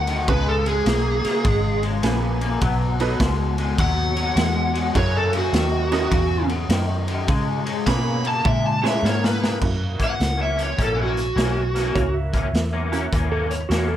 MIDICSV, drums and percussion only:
0, 0, Header, 1, 2, 480
1, 0, Start_track
1, 0, Tempo, 583658
1, 235, Time_signature, 4, 2, 24, 8
1, 11487, End_track
2, 0, Start_track
2, 0, Title_t, "Drums"
2, 59, Note_on_c, 9, 51, 68
2, 141, Note_off_c, 9, 51, 0
2, 231, Note_on_c, 9, 36, 114
2, 231, Note_on_c, 9, 51, 83
2, 313, Note_off_c, 9, 36, 0
2, 313, Note_off_c, 9, 51, 0
2, 543, Note_on_c, 9, 51, 61
2, 625, Note_off_c, 9, 51, 0
2, 708, Note_on_c, 9, 51, 87
2, 716, Note_on_c, 9, 38, 105
2, 790, Note_off_c, 9, 51, 0
2, 799, Note_off_c, 9, 38, 0
2, 1024, Note_on_c, 9, 51, 61
2, 1032, Note_on_c, 9, 38, 33
2, 1106, Note_off_c, 9, 51, 0
2, 1114, Note_off_c, 9, 38, 0
2, 1189, Note_on_c, 9, 51, 75
2, 1191, Note_on_c, 9, 36, 111
2, 1272, Note_off_c, 9, 51, 0
2, 1273, Note_off_c, 9, 36, 0
2, 1504, Note_on_c, 9, 51, 54
2, 1586, Note_off_c, 9, 51, 0
2, 1669, Note_on_c, 9, 51, 89
2, 1678, Note_on_c, 9, 38, 115
2, 1752, Note_off_c, 9, 51, 0
2, 1760, Note_off_c, 9, 38, 0
2, 1984, Note_on_c, 9, 51, 65
2, 2066, Note_off_c, 9, 51, 0
2, 2150, Note_on_c, 9, 51, 88
2, 2153, Note_on_c, 9, 36, 110
2, 2232, Note_off_c, 9, 51, 0
2, 2235, Note_off_c, 9, 36, 0
2, 2466, Note_on_c, 9, 51, 65
2, 2548, Note_off_c, 9, 51, 0
2, 2630, Note_on_c, 9, 51, 84
2, 2632, Note_on_c, 9, 36, 84
2, 2639, Note_on_c, 9, 38, 109
2, 2713, Note_off_c, 9, 51, 0
2, 2714, Note_off_c, 9, 36, 0
2, 2721, Note_off_c, 9, 38, 0
2, 2944, Note_on_c, 9, 51, 65
2, 3027, Note_off_c, 9, 51, 0
2, 3111, Note_on_c, 9, 51, 89
2, 3112, Note_on_c, 9, 36, 107
2, 3193, Note_off_c, 9, 51, 0
2, 3195, Note_off_c, 9, 36, 0
2, 3425, Note_on_c, 9, 51, 61
2, 3508, Note_off_c, 9, 51, 0
2, 3592, Note_on_c, 9, 51, 94
2, 3600, Note_on_c, 9, 38, 126
2, 3674, Note_off_c, 9, 51, 0
2, 3682, Note_off_c, 9, 38, 0
2, 3909, Note_on_c, 9, 51, 70
2, 3991, Note_off_c, 9, 51, 0
2, 4073, Note_on_c, 9, 36, 112
2, 4074, Note_on_c, 9, 51, 90
2, 4155, Note_off_c, 9, 36, 0
2, 4156, Note_off_c, 9, 51, 0
2, 4382, Note_on_c, 9, 51, 67
2, 4464, Note_off_c, 9, 51, 0
2, 4552, Note_on_c, 9, 51, 81
2, 4561, Note_on_c, 9, 38, 108
2, 4635, Note_off_c, 9, 51, 0
2, 4643, Note_off_c, 9, 38, 0
2, 4866, Note_on_c, 9, 51, 67
2, 4874, Note_on_c, 9, 38, 36
2, 4948, Note_off_c, 9, 51, 0
2, 4957, Note_off_c, 9, 38, 0
2, 5030, Note_on_c, 9, 36, 114
2, 5031, Note_on_c, 9, 51, 80
2, 5112, Note_off_c, 9, 36, 0
2, 5113, Note_off_c, 9, 51, 0
2, 5340, Note_on_c, 9, 51, 57
2, 5423, Note_off_c, 9, 51, 0
2, 5507, Note_on_c, 9, 51, 92
2, 5515, Note_on_c, 9, 38, 121
2, 5589, Note_off_c, 9, 51, 0
2, 5597, Note_off_c, 9, 38, 0
2, 5821, Note_on_c, 9, 51, 63
2, 5903, Note_off_c, 9, 51, 0
2, 5987, Note_on_c, 9, 51, 79
2, 5990, Note_on_c, 9, 36, 116
2, 6069, Note_off_c, 9, 51, 0
2, 6072, Note_off_c, 9, 36, 0
2, 6304, Note_on_c, 9, 51, 67
2, 6386, Note_off_c, 9, 51, 0
2, 6470, Note_on_c, 9, 36, 86
2, 6470, Note_on_c, 9, 51, 87
2, 6478, Note_on_c, 9, 38, 114
2, 6552, Note_off_c, 9, 36, 0
2, 6552, Note_off_c, 9, 51, 0
2, 6560, Note_off_c, 9, 38, 0
2, 6782, Note_on_c, 9, 51, 68
2, 6865, Note_off_c, 9, 51, 0
2, 6950, Note_on_c, 9, 36, 112
2, 6952, Note_on_c, 9, 48, 70
2, 7032, Note_off_c, 9, 36, 0
2, 7035, Note_off_c, 9, 48, 0
2, 7281, Note_on_c, 9, 38, 76
2, 7363, Note_off_c, 9, 38, 0
2, 7442, Note_on_c, 9, 38, 79
2, 7524, Note_off_c, 9, 38, 0
2, 7602, Note_on_c, 9, 38, 96
2, 7684, Note_off_c, 9, 38, 0
2, 7760, Note_on_c, 9, 38, 100
2, 7843, Note_off_c, 9, 38, 0
2, 7908, Note_on_c, 9, 36, 93
2, 7908, Note_on_c, 9, 49, 85
2, 7990, Note_off_c, 9, 49, 0
2, 7991, Note_off_c, 9, 36, 0
2, 8221, Note_on_c, 9, 36, 69
2, 8223, Note_on_c, 9, 42, 55
2, 8304, Note_off_c, 9, 36, 0
2, 8305, Note_off_c, 9, 42, 0
2, 8392, Note_on_c, 9, 42, 66
2, 8400, Note_on_c, 9, 38, 92
2, 8474, Note_off_c, 9, 42, 0
2, 8482, Note_off_c, 9, 38, 0
2, 8706, Note_on_c, 9, 42, 55
2, 8788, Note_off_c, 9, 42, 0
2, 8870, Note_on_c, 9, 36, 86
2, 8872, Note_on_c, 9, 42, 66
2, 8952, Note_off_c, 9, 36, 0
2, 8954, Note_off_c, 9, 42, 0
2, 9187, Note_on_c, 9, 42, 46
2, 9270, Note_off_c, 9, 42, 0
2, 9355, Note_on_c, 9, 42, 72
2, 9363, Note_on_c, 9, 38, 101
2, 9437, Note_off_c, 9, 42, 0
2, 9445, Note_off_c, 9, 38, 0
2, 9669, Note_on_c, 9, 42, 52
2, 9677, Note_on_c, 9, 38, 29
2, 9751, Note_off_c, 9, 42, 0
2, 9759, Note_off_c, 9, 38, 0
2, 9832, Note_on_c, 9, 36, 91
2, 9833, Note_on_c, 9, 42, 68
2, 9915, Note_off_c, 9, 36, 0
2, 9915, Note_off_c, 9, 42, 0
2, 10145, Note_on_c, 9, 36, 72
2, 10148, Note_on_c, 9, 42, 55
2, 10227, Note_off_c, 9, 36, 0
2, 10230, Note_off_c, 9, 42, 0
2, 10317, Note_on_c, 9, 42, 73
2, 10325, Note_on_c, 9, 38, 98
2, 10399, Note_off_c, 9, 42, 0
2, 10407, Note_off_c, 9, 38, 0
2, 10631, Note_on_c, 9, 42, 58
2, 10713, Note_off_c, 9, 42, 0
2, 10795, Note_on_c, 9, 36, 91
2, 10797, Note_on_c, 9, 42, 71
2, 10877, Note_off_c, 9, 36, 0
2, 10879, Note_off_c, 9, 42, 0
2, 11109, Note_on_c, 9, 42, 55
2, 11191, Note_off_c, 9, 42, 0
2, 11274, Note_on_c, 9, 42, 78
2, 11282, Note_on_c, 9, 38, 98
2, 11356, Note_off_c, 9, 42, 0
2, 11364, Note_off_c, 9, 38, 0
2, 11487, End_track
0, 0, End_of_file